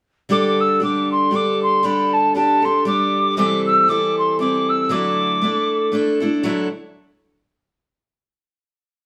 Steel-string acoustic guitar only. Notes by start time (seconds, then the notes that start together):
0.29 D3 G3 D4 G4 A4
0.80 G3 D4 G4 A4
1.31 G3 D4 G4 A4
1.83 G3 D4 G4 A4
2.35 G3 D4 G4 A4
2.62 D4 G4 A4
2.85 G3 D4 G4 A4
3.37 C3 E3 G3 C4 E4 A4
3.88 G3 C4 E4 A4
4.39 G3 C4 E4 A4
4.89 D3 F#3 A3 D4 E4 A4
5.42 A3 D4 E4 A4
5.92 A3 D4 E4 A4
6.20 A3 D4 E4 A4
6.43 D3 F#3 A3 D4 E4 A4